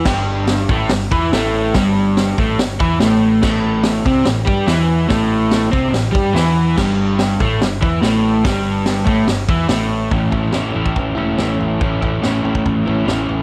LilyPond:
<<
  \new Staff \with { instrumentName = "Overdriven electric guitar" } { \time 4/4 \key a \mixolydian \tempo 4 = 143 <g, g>4. <a, a>8 g,8 <e e'>8 <a, a>4 | <g, g>4. <a, a>8 g,8 <e e'>8 <a, a>4 | <a, a>4. <c c'>8 a,8 <g g'>8 <e e'>4 | <a, a>4. <c c'>8 a,8 <g g'>8 <e e'>4 |
<g, g>4. <a, a>8 g,8 <e e'>8 <a, a>4 | <g, g>4. <a, a>8 g,8 <e e'>8 <a, a>4 | <a, e a cis' e'>8 <a cis' e'>8 <a, e a cis' e'>8 <a cis' e'>4 <a cis' e'>8 <e a cis' e'>4 | <a, e a cis' e'>8 <a cis' e'>8 <a, e a cis' e'>8 <a cis' e'>4 <a cis' e'>8 <e a cis' e'>4 | }
  \new Staff \with { instrumentName = "Picked electric bass" } { \clef bass \time 4/4 \key a \mixolydian g,,4. a,,8 g,,8 e,8 a,,4 | g,,4. a,,8 g,,8 e,8 a,,4 | a,,4. c,8 a,,8 g,8 e,4 | a,,4. c,8 a,,8 g,8 e,4 |
g,,4. a,,8 g,,8 e,8 a,,4 | g,,4. a,,8 g,,8 e,8 a,,4 | a,,8 a,,8 a,,8 a,,8 a,,8 e,,8 a,,8 a,,8 | a,,8 a,,8 a,,8 a,,8 a,,4 a,,8 a,,8 | }
  \new DrumStaff \with { instrumentName = "Drums" } \drummode { \time 4/4 <cymc bd sn>4 <hho sn>8 bd8 <hho sn>8 bd8 <hho sn>4 | <hho bd sn>4 <hho sn>8 bd8 <hho sn>8 bd8 <hho sn>4 | <cymc bd sn>4 <hho sn>8 bd8 <hho sn>8 bd8 <hho sn>4 | <hho bd sn>4 <hho sn>8 bd8 <hho sn>8 bd8 <hho sn>4 |
<cymc bd sn>4 <hho sn>8 bd8 <hho sn>8 bd8 <hho sn>4 | <hho bd sn>4 <hho sn>8 bd8 <hho sn>8 bd8 <hho sn>4 | <bd tomfh>8 <bd tomfh>8 <sn tomfh>8 tomfh16 bd16 <bd tomfh>8 tomfh8 <sn tomfh>8 tomfh8 | <bd tomfh>8 <bd tomfh>8 <sn tomfh>8 tomfh16 bd16 <bd tomfh>8 tomfh8 <sn tomfh>8 tomfh8 | }
>>